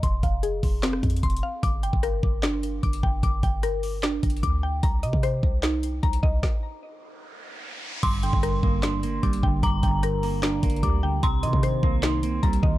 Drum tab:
CC |------------------------------------------------|------------------------------------------------|------------------------------------------------|------------------------------------------------|
HH |x-----x-----x-----o-----x-----x-x-x-x-x-x-------|x-----x-----x-----------x-----x-----x--x--------|x-----x-----x-----o-----x-----x-x-x-x-----------|x-----x-----x-----------x-----x-----x--x--------|
CP |------------------------x-----------------------|------------------------x-----------------------|------------------------x-----------------------|------------------------x-----------------------|
SD |------------------------o--r--------------------|------------r-----------o-----------------------|------------r-----------o-----------------------|------------r-----------o-----------------------|
BD |o-----o-----------o-----------o-----o-----------|o--------o--------o-----------------o-----o-----|o-----o-----------------------o-----o-----------|o--------o--------o-----------------o-----o-----|

CC |------------------------------------------------|x-----------------------------------------------|------------------------------------------------|------------------------------------------------|
HH |------------------------------------------------|x-----x-----x-----------x-----x-----x--x--------|x-----x-----x-----o-----x-----x-x-x-x-----------|x-----x-----x-----------x-----x-----x--x--------|
CP |------------------------------------------------|------------------------x-----------------------|------------------------x-----------------------|------------------------x-----------------------|
SD |o-----------------------------------------------|------------r-----------o-----------------------|------------r-----------o-----------------------|------------r-----------o-----------------------|
BD |o-----------------------------------------------|o--------o--------o-----------------o-----o-----|o-----o-----------------------o-----o-----------|o--------o--------o-----------------o-----o-----|